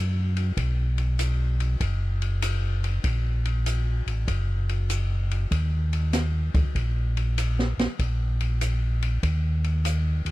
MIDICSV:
0, 0, Header, 1, 3, 480
1, 0, Start_track
1, 0, Tempo, 618557
1, 438, Time_signature, 4, 2, 24, 8
1, 8003, End_track
2, 0, Start_track
2, 0, Title_t, "Tonewheel organ"
2, 0, Program_c, 0, 16
2, 0, Note_on_c, 0, 42, 79
2, 407, Note_off_c, 0, 42, 0
2, 443, Note_on_c, 0, 35, 81
2, 1369, Note_off_c, 0, 35, 0
2, 1399, Note_on_c, 0, 30, 85
2, 2327, Note_off_c, 0, 30, 0
2, 2356, Note_on_c, 0, 34, 82
2, 3125, Note_off_c, 0, 34, 0
2, 3151, Note_on_c, 0, 33, 59
2, 3302, Note_off_c, 0, 33, 0
2, 3315, Note_on_c, 0, 30, 87
2, 4245, Note_off_c, 0, 30, 0
2, 4276, Note_on_c, 0, 39, 79
2, 5046, Note_off_c, 0, 39, 0
2, 5078, Note_on_c, 0, 39, 40
2, 5158, Note_off_c, 0, 39, 0
2, 5238, Note_on_c, 0, 34, 85
2, 6007, Note_off_c, 0, 34, 0
2, 6032, Note_on_c, 0, 34, 37
2, 6114, Note_off_c, 0, 34, 0
2, 6201, Note_on_c, 0, 34, 84
2, 7130, Note_off_c, 0, 34, 0
2, 7161, Note_on_c, 0, 39, 84
2, 7929, Note_off_c, 0, 39, 0
2, 7953, Note_on_c, 0, 39, 42
2, 8003, Note_off_c, 0, 39, 0
2, 8003, End_track
3, 0, Start_track
3, 0, Title_t, "Drums"
3, 283, Note_on_c, 9, 51, 44
3, 361, Note_off_c, 9, 51, 0
3, 442, Note_on_c, 9, 36, 32
3, 444, Note_on_c, 9, 51, 61
3, 520, Note_off_c, 9, 36, 0
3, 522, Note_off_c, 9, 51, 0
3, 759, Note_on_c, 9, 51, 43
3, 837, Note_off_c, 9, 51, 0
3, 923, Note_on_c, 9, 44, 56
3, 923, Note_on_c, 9, 51, 66
3, 1000, Note_off_c, 9, 44, 0
3, 1000, Note_off_c, 9, 51, 0
3, 1242, Note_on_c, 9, 51, 48
3, 1320, Note_off_c, 9, 51, 0
3, 1401, Note_on_c, 9, 36, 33
3, 1401, Note_on_c, 9, 51, 62
3, 1478, Note_off_c, 9, 36, 0
3, 1479, Note_off_c, 9, 51, 0
3, 1721, Note_on_c, 9, 51, 44
3, 1798, Note_off_c, 9, 51, 0
3, 1879, Note_on_c, 9, 44, 52
3, 1879, Note_on_c, 9, 51, 74
3, 1957, Note_off_c, 9, 44, 0
3, 1957, Note_off_c, 9, 51, 0
3, 2202, Note_on_c, 9, 51, 44
3, 2280, Note_off_c, 9, 51, 0
3, 2358, Note_on_c, 9, 51, 61
3, 2359, Note_on_c, 9, 36, 36
3, 2435, Note_off_c, 9, 51, 0
3, 2436, Note_off_c, 9, 36, 0
3, 2680, Note_on_c, 9, 51, 45
3, 2758, Note_off_c, 9, 51, 0
3, 2841, Note_on_c, 9, 44, 58
3, 2841, Note_on_c, 9, 51, 57
3, 2918, Note_off_c, 9, 44, 0
3, 2918, Note_off_c, 9, 51, 0
3, 3162, Note_on_c, 9, 51, 47
3, 3240, Note_off_c, 9, 51, 0
3, 3319, Note_on_c, 9, 36, 31
3, 3320, Note_on_c, 9, 51, 58
3, 3396, Note_off_c, 9, 36, 0
3, 3398, Note_off_c, 9, 51, 0
3, 3642, Note_on_c, 9, 51, 42
3, 3719, Note_off_c, 9, 51, 0
3, 3799, Note_on_c, 9, 44, 62
3, 3799, Note_on_c, 9, 51, 70
3, 3877, Note_off_c, 9, 44, 0
3, 3877, Note_off_c, 9, 51, 0
3, 4123, Note_on_c, 9, 51, 46
3, 4200, Note_off_c, 9, 51, 0
3, 4279, Note_on_c, 9, 36, 32
3, 4280, Note_on_c, 9, 51, 59
3, 4356, Note_off_c, 9, 36, 0
3, 4358, Note_off_c, 9, 51, 0
3, 4600, Note_on_c, 9, 51, 51
3, 4677, Note_off_c, 9, 51, 0
3, 4758, Note_on_c, 9, 38, 36
3, 4758, Note_on_c, 9, 44, 60
3, 4758, Note_on_c, 9, 51, 59
3, 4835, Note_off_c, 9, 38, 0
3, 4835, Note_off_c, 9, 44, 0
3, 4835, Note_off_c, 9, 51, 0
3, 5079, Note_on_c, 9, 36, 58
3, 5079, Note_on_c, 9, 51, 46
3, 5156, Note_off_c, 9, 36, 0
3, 5157, Note_off_c, 9, 51, 0
3, 5240, Note_on_c, 9, 36, 33
3, 5242, Note_on_c, 9, 51, 54
3, 5317, Note_off_c, 9, 36, 0
3, 5320, Note_off_c, 9, 51, 0
3, 5563, Note_on_c, 9, 51, 44
3, 5641, Note_off_c, 9, 51, 0
3, 5725, Note_on_c, 9, 44, 49
3, 5725, Note_on_c, 9, 51, 75
3, 5802, Note_off_c, 9, 44, 0
3, 5802, Note_off_c, 9, 51, 0
3, 5890, Note_on_c, 9, 38, 29
3, 5967, Note_off_c, 9, 38, 0
3, 6047, Note_on_c, 9, 51, 45
3, 6049, Note_on_c, 9, 38, 44
3, 6125, Note_off_c, 9, 51, 0
3, 6127, Note_off_c, 9, 38, 0
3, 6203, Note_on_c, 9, 36, 32
3, 6203, Note_on_c, 9, 51, 55
3, 6280, Note_off_c, 9, 36, 0
3, 6280, Note_off_c, 9, 51, 0
3, 6522, Note_on_c, 9, 51, 47
3, 6600, Note_off_c, 9, 51, 0
3, 6682, Note_on_c, 9, 44, 61
3, 6682, Note_on_c, 9, 51, 62
3, 6759, Note_off_c, 9, 44, 0
3, 6759, Note_off_c, 9, 51, 0
3, 7002, Note_on_c, 9, 51, 46
3, 7080, Note_off_c, 9, 51, 0
3, 7162, Note_on_c, 9, 36, 31
3, 7163, Note_on_c, 9, 51, 57
3, 7240, Note_off_c, 9, 36, 0
3, 7241, Note_off_c, 9, 51, 0
3, 7483, Note_on_c, 9, 51, 43
3, 7560, Note_off_c, 9, 51, 0
3, 7642, Note_on_c, 9, 44, 56
3, 7642, Note_on_c, 9, 51, 64
3, 7720, Note_off_c, 9, 44, 0
3, 7720, Note_off_c, 9, 51, 0
3, 7961, Note_on_c, 9, 51, 48
3, 8003, Note_off_c, 9, 51, 0
3, 8003, End_track
0, 0, End_of_file